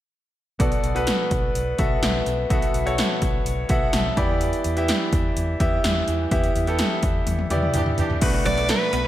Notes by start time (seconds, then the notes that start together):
0.59 B1 B2 B3 F#4 A4 D5, kick, closed hi-hat
0.72 closed hi-hat
0.83 B1, closed hi-hat
0.95 B3 F#4 A4 B4, closed hi-hat
1.07 snare, closed hi-hat
1.31 B1, kick, closed hi-hat
1.55 B1, closed hi-hat
1.78 B1 B3 F#4 A4 E5, kick, closed hi-hat
2.02 B1, snare, closed hi-hat
2.26 B1, closed hi-hat
2.50 B1 B2 B3 F#4 A4 E5, kick, closed hi-hat
2.62 closed hi-hat
2.74 B1, closed hi-hat
2.85 B3 F#4 A4 C#5, closed hi-hat
2.98 snare, closed hi-hat
3.22 B1, kick, closed hi-hat
3.45 B1, closed hi-hat
3.69 B1 B3 F#4 A4 E5 F#5, kick, closed hi-hat
3.93 B1 A5, snare, closed hi-hat
4.16 E2 E3 B3 E4 G4 D5 B5, kick, closed hi-hat
4.41 closed hi-hat
4.53 closed hi-hat
4.64 E2, closed hi-hat
4.76 B3 E4 G4 E5, closed hi-hat
4.88 snare, closed hi-hat
5.13 E2, kick, closed hi-hat
5.37 E2, closed hi-hat
5.60 E2 B3 E4 G4 E5, kick, closed hi-hat
5.84 E2, snare, closed hi-hat
6.08 E2 E3, closed hi-hat
6.31 E2 B3 E4 G4 E5, kick, closed hi-hat
6.44 closed hi-hat
6.55 E2, closed hi-hat
6.67 B3 E4 G4 A4, closed hi-hat
6.79 snare, closed hi-hat
7.03 E2, kick, closed hi-hat
7.26 E2, closed hi-hat, high tom
7.39 high tom
7.50 E2 B3 E4 G4 D5, closed hi-hat, mid tom
7.62 mid tom
7.74 E2 E3 D4 G4, closed hi-hat, mid tom
7.86 mid tom
7.98 E2 E3 D4 G4, closed hi-hat, floor tom
8.10 floor tom
8.21 B1 B2 A3 D4 F#4 B4, kick, closed hi-hat, crash
8.34 muted clean electric guitar stroke
8.45 B1 F#3 D5, closed hi-hat
8.57 A3, closed hi-hat
8.69 B4, muted clean electric guitar stroke, snare, closed hi-hat
8.93 B1 B3, closed hi-hat